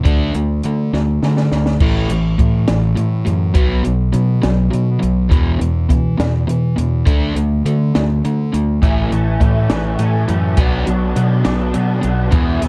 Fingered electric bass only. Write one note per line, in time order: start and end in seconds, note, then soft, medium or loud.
0.06 0.31 D2 loud
0.35 0.60 D2 medium
0.64 0.90 D3 medium
0.93 1.18 D2 medium
1.23 1.48 D3 medium
1.52 1.77 D2 medium
1.81 2.06 A1 medium
2.09 2.35 A1 medium
2.39 2.65 A2 medium
2.69 2.94 A1 medium
2.98 3.23 A2 medium
3.27 3.52 F#2 medium
3.55 3.81 B1 medium
3.86 4.11 B1 medium
4.14 4.40 B2 medium
4.44 4.69 B1 medium
4.74 4.99 B2 medium
5.03 5.28 B1 medium
5.31 5.57 E2 loud
5.61 5.86 E2 medium
5.90 6.15 E3 medium
6.19 6.45 E2 medium
6.47 6.73 E3 medium
6.78 7.03 E2 medium
7.07 7.32 D2 loud
7.36 7.61 D2 medium
7.65 7.91 D3 medium
7.96 8.21 D2 medium
8.24 8.50 D3 medium
8.54 8.79 D2 medium
8.82 9.08 A1 medium
9.12 9.37 A1 medium
9.41 9.67 A2 medium
9.70 9.96 A1 medium
9.99 10.25 A2 medium
10.29 10.54 F#2 medium
10.58 10.83 B1 loud
10.87 11.13 B1 medium
11.16 11.42 B2 medium
11.46 11.71 B1 medium
11.75 12.01 B2 medium
12.04 12.29 B1 medium
12.33 12.58 E2 loud
12.63 12.68 E2 medium